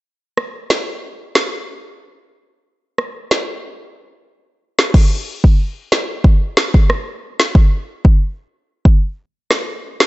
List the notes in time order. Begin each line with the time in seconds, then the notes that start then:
0.37 cross-stick
0.70 snare
1.35 snare
2.98 cross-stick
3.31 snare
4.79 snare
4.94 kick, crash
5.44 kick
5.92 snare
6.24 kick
6.57 snare
6.74 kick
6.90 cross-stick
7.40 snare
7.55 kick
8.05 kick
8.85 kick
9.51 cross-stick, snare
10.00 snare